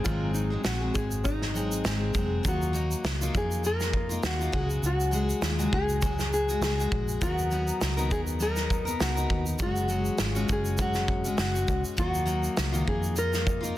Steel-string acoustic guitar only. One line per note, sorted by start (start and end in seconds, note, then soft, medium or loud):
0.05 0.52 G#2 medium
0.05 0.52 D#3 medium
0.05 0.52 F#3 medium
0.05 0.51 G#3 medium
0.05 0.50 C4 medium
0.05 0.49 G#4 medium
0.50 0.82 F#3 soft
0.50 0.82 G#3 soft
0.50 0.81 C4 medium
0.50 0.79 G#4 soft
0.81 1.53 F#3 soft
0.81 1.54 G#3 soft
0.81 1.55 C4 soft
0.81 1.54 G#4 soft
1.54 1.83 F#3 medium
1.54 1.84 G#3 medium
1.54 1.85 C4 medium
1.54 1.86 G#4 medium
1.84 2.13 F#3 medium
1.84 2.14 G#3 medium
1.84 2.15 C4 medium
1.84 2.16 G#4 medium
2.14 2.42 F#3 medium
2.14 2.44 G#3 medium
2.14 2.45 C4 medium
2.14 2.46 G#4 medium
2.43 2.72 F#3 medium
2.43 2.73 A#3 medium
2.43 2.74 D#4 medium
2.43 2.75 F4 medium
2.73 3.20 F#3 medium
2.73 3.21 A#3 medium
2.73 3.21 D#4 medium
3.21 3.65 D#3 medium
3.21 3.65 F#3 medium
3.21 3.63 A#3 medium
3.21 3.64 D#4 medium
3.21 3.64 F4 medium
3.64 4.10 A#3 medium
3.64 4.10 D#4 medium
3.64 4.08 F4 medium
4.09 4.41 A#3 soft
4.09 4.40 D#4 soft
4.09 4.38 F4 medium
4.39 4.53 A#3 soft
4.39 4.53 D#4 soft
4.39 4.53 F4 soft
4.52 5.12 C#3 medium
4.52 5.11 F#3 medium
4.52 5.11 G#3 medium
4.52 5.13 F#4 medium
4.52 5.13 G#4 medium
5.11 5.58 F#3 medium
5.11 5.58 G#3 medium
5.11 5.58 F#4 medium
5.11 5.57 G#4 medium
5.59 6.03 C#3 soft
5.59 6.01 F#3 soft
5.59 6.03 G#3 medium
5.59 6.02 F#4 medium
5.59 6.02 G#4 medium
6.02 6.48 F#3 medium
6.02 6.49 G#3 medium
6.02 6.49 F#4 medium
6.02 6.48 G#4 medium
6.49 6.80 G#3 soft
6.49 6.78 F#4 medium
6.49 6.77 G#4 medium
6.78 7.21 G#3 soft
6.78 7.22 F#4 soft
6.78 7.21 G#4 medium
7.21 7.50 F#3 medium
7.21 7.51 B3 medium
7.21 7.52 D#4 medium
7.21 7.52 A#4 medium
7.51 7.97 F#3 medium
7.51 7.97 B3 medium
7.51 7.97 D#4 medium
7.51 7.96 A#4 medium
7.97 8.42 D#3 medium
7.97 8.39 F#3 medium
7.97 8.39 B3 medium
7.97 8.41 D#4 medium
7.97 8.40 A#4 medium
8.40 8.86 F#3 medium
8.40 8.87 B3 medium
8.40 8.86 D#4 medium
8.40 8.84 A#4 medium
8.85 9.17 B3 soft
8.85 9.16 D#4 soft
8.85 9.14 A#4 medium
9.15 9.59 B3 soft
9.15 9.60 D#4 soft
9.15 9.59 A#4 medium
9.59 9.87 F#3 medium
9.59 9.88 G#3 medium
9.59 9.89 C#4 medium
9.59 9.90 F#4 medium
9.88 10.35 F#3 medium
9.88 10.35 G#3 medium
9.88 10.35 C#4 medium
9.88 10.34 F#4 medium
10.35 10.77 F#3 soft
10.35 10.78 G#3 medium
10.35 10.79 C#4 medium
10.35 10.79 F#4 medium
10.78 11.25 F#3 medium
10.78 11.25 G#3 medium
10.78 11.25 C#4 medium
10.78 11.23 F#4 medium
11.24 11.55 G#3 soft
11.24 11.54 C#4 soft
11.24 11.52 F#4 medium
11.54 11.97 G#3 soft
11.54 11.98 C#4 soft
11.54 11.97 F#4 soft
11.97 12.24 F#3 medium
11.97 12.25 A#3 medium
11.97 12.26 D#4 medium
11.97 12.29 F4 medium
12.26 12.73 F#3 medium
12.26 12.72 A#3 medium
12.26 12.72 D#4 medium
12.72 13.17 D#3 medium
12.72 13.17 F#3 medium
12.72 13.15 A#3 soft
12.72 13.15 D#4 medium
12.72 13.16 F4 medium
13.16 13.63 A#3 medium
13.16 13.61 D#4 medium
13.16 13.59 F4 medium
13.61 13.78 A#3 soft
13.61 13.78 D#4 soft
13.61 13.78 F4 medium